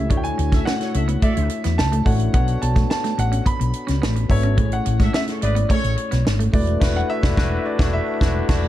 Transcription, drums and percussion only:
0.10 kick loud
0.10 closed hi-hat medium
0.25 closed hi-hat soft
0.39 closed hi-hat medium
0.52 kick medium
0.52 snare soft
0.52 closed hi-hat soft
0.67 snare loud
0.81 snare soft
0.81 closed hi-hat soft
0.94 closed hi-hat medium
1.08 closed hi-hat soft
1.22 kick medium
1.22 closed hi-hat medium
1.37 closed hi-hat medium
1.50 closed hi-hat medium
1.64 snare soft
1.64 closed hi-hat medium
1.79 snare loud
1.93 closed hi-hat soft
2.06 kick medium
2.06 open hi-hat medium
2.20 closed hi-hat soft
2.34 kick loud
2.34 closed hi-hat medium
2.48 closed hi-hat medium
2.62 closed hi-hat medium
2.76 kick medium
2.76 snare soft
2.76 closed hi-hat soft
2.91 snare loud
3.04 snare soft
3.04 closed hi-hat soft
3.19 closed hi-hat medium
3.32 closed hi-hat medium
3.46 kick medium
3.46 closed hi-hat loud
3.61 closed hi-hat medium
3.73 closed hi-hat medium
3.88 snare soft
3.88 closed hi-hat medium
4.03 snare loud
4.16 closed hi-hat soft
4.30 kick medium
4.30 open hi-hat medium
4.43 closed hi-hat soft
4.58 kick loud
4.58 closed hi-hat medium
4.72 closed hi-hat medium
4.86 closed hi-hat medium
5.00 kick medium
5.00 snare soft
5.00 closed hi-hat soft
5.14 snare loud
5.28 snare soft
5.28 closed hi-hat soft
5.42 closed hi-hat medium
5.56 closed hi-hat medium
5.70 kick medium
5.70 closed hi-hat medium
5.84 closed hi-hat medium
5.98 closed hi-hat medium
6.12 snare soft
6.12 closed hi-hat medium
6.27 snare loud
6.40 closed hi-hat medium
6.54 kick loud
6.54 open hi-hat medium
6.67 closed hi-hat soft
6.82 kick loud
6.82 snare loud
6.82 crash medium
7.23 kick loud
7.23 snare loud
7.37 kick loud
7.37 snare loud
7.79 kick loud
7.79 snare loud
8.21 kick loud
8.21 snare loud
8.49 kick loud
8.49 snare loud
8.49 crash medium

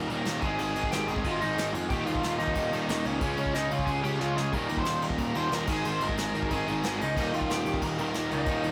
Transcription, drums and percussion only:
0.09 crash medium
0.25 snare loud
0.25 crash medium
0.41 kick loud
0.41 crash medium
0.59 crash medium
0.75 crash medium
0.83 kick medium
0.92 snare loud
0.92 crash medium
1.08 crash medium
1.16 kick loud
1.24 kick loud
1.24 crash loud
1.41 crash medium
1.58 snare loud
1.58 crash medium
1.74 crash medium
1.90 kick loud
1.90 crash medium
2.06 crash medium
2.15 kick medium
2.23 snare loud
2.23 crash loud
2.40 crash medium
2.48 kick loud
2.55 kick loud
2.55 crash medium
2.73 crash medium
2.89 snare loud
2.89 crash medium
3.05 crash medium
3.21 kick loud
3.21 crash medium
3.37 crash medium
3.46 kick medium
3.54 snare loud
3.54 crash medium
3.71 crash medium
3.79 kick loud
3.87 kick loud
3.87 crash medium
4.04 crash medium
4.21 snare medium
4.38 snare loud
4.53 kick loud
4.53 crash medium
4.69 crash medium
4.77 kick loud
4.85 snare loud
4.85 crash loud
5.02 crash medium
5.10 kick medium
5.18 kick loud
5.18 crash medium
5.35 crash medium
5.52 snare loud
5.52 crash medium
5.67 kick loud
5.67 crash loud
5.85 crash medium
6.01 crash medium
6.09 kick medium
6.17 snare loud
6.17 crash medium
6.35 crash medium
6.43 kick loud
6.51 kick loud
6.51 crash medium
6.68 crash medium
6.83 snare loud
6.83 crash loud
7.01 crash medium
7.17 kick loud
7.17 crash loud
7.34 crash medium
7.41 kick medium
7.50 snare loud
7.50 crash medium
7.66 crash medium
7.74 kick loud
7.82 kick loud
7.82 crash loud
7.98 crash medium
8.14 snare loud
8.14 crash medium
8.31 crash medium
8.46 kick loud
8.46 crash medium
8.63 crash medium

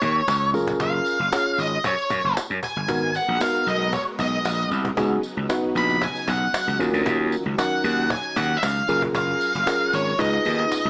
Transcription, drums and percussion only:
0.01 cajon bass loud
0.01 tambourine medium
0.28 cajon slap loud
0.28 tambourine medium
0.54 tambourine soft
0.67 cajon bass loud
0.67 tambourine soft
0.80 cajon bass loud
0.80 tambourine soft
1.06 cajon slap soft
1.06 tambourine medium
1.32 cajon slap loud
1.32 tambourine medium
1.58 tambourine medium
1.84 cajon bass loud
1.84 tambourine medium
1.98 tambourine soft
2.10 cajon bass loud
2.10 tambourine medium
2.37 cajon slap loud
2.37 tambourine medium
2.63 cajon bass medium
2.63 tambourine soft
2.89 cajon bass loud
2.89 tambourine medium
3.15 cajon slap soft
3.15 tambourine medium
3.41 cajon slap loud
3.41 tambourine medium
3.67 tambourine medium
3.93 cajon bass loud
3.93 tambourine medium
4.19 cajon bass medium
4.19 tambourine medium
4.45 cajon slap loud
4.45 tambourine medium
4.71 tambourine soft
4.85 cajon bass loud
4.97 cajon bass loud
4.97 tambourine medium
5.23 cajon slap soft
5.23 tambourine medium
5.50 cajon slap loud
5.50 tambourine loud
5.76 tambourine medium
5.89 tambourine soft
6.02 cajon bass loud
6.02 tambourine medium
6.15 tambourine soft
6.28 cajon bass loud
6.28 tambourine medium
6.54 cajon slap loud
6.54 tambourine medium
6.80 tambourine medium
6.94 tambourine soft
7.06 cajon bass loud
7.06 tambourine medium
7.32 cajon slap soft
7.32 tambourine medium
7.58 cajon slap loud
7.58 tambourine medium
7.85 tambourine medium
8.10 cajon bass loud
8.10 tambourine medium
8.36 cajon bass loud
8.36 tambourine medium
8.63 cajon slap loud
8.63 tambourine medium
8.89 tambourine medium
9.02 cajon bass medium
9.15 cajon bass loud
9.15 tambourine medium
9.41 cajon slap soft
9.41 tambourine medium
9.55 tambourine soft
9.67 cajon slap loud
9.67 tambourine medium
9.93 tambourine medium
10.19 cajon bass loud
10.19 cajon slap medium
10.19 tambourine medium
10.33 cajon slap medium
10.45 tambourine medium
10.59 cajon slap medium
10.72 cajon slap loud
10.72 tambourine medium

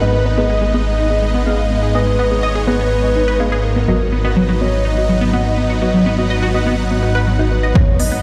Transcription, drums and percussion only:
3.77 tambourine medium
4.01 tambourine soft
4.25 tambourine medium
5.22 tambourine medium
5.34 tambourine medium
5.70 tambourine medium
5.83 tambourine medium
6.19 tambourine medium
6.31 tambourine medium
6.67 tambourine medium
6.79 tambourine medium
6.91 tambourine soft
7.16 tambourine medium
7.28 tambourine medium
7.40 tambourine soft
7.64 tambourine medium
7.75 kick loud
8.00 open hi-hat loud

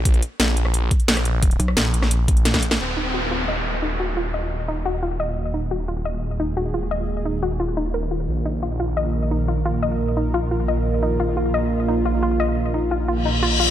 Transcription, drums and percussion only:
0.05 kick loud
0.05 closed hi-hat medium
0.14 closed hi-hat soft
0.23 closed hi-hat medium
0.40 snare loud
0.40 closed hi-hat loud
0.57 closed hi-hat medium
0.65 cross-stick medium
0.74 closed hi-hat medium
0.91 kick loud
0.91 closed hi-hat medium
1.00 closed hi-hat soft
1.08 snare loud
1.08 closed hi-hat medium
1.17 cross-stick medium
1.17 closed hi-hat soft
1.25 closed hi-hat medium
1.43 kick loud
1.43 closed hi-hat medium
1.51 closed hi-hat soft
1.60 closed hi-hat medium
1.68 cross-stick medium
1.77 snare loud
1.77 closed hi-hat loud
1.94 closed hi-hat medium
2.02 cross-stick medium
2.02 snare soft
2.11 closed hi-hat loud
2.28 kick loud
2.28 closed hi-hat medium
2.37 closed hi-hat soft
2.45 snare medium
2.45 closed hi-hat loud
2.54 kick medium
2.54 snare medium
2.54 closed hi-hat soft
2.63 closed hi-hat medium
2.71 snare medium

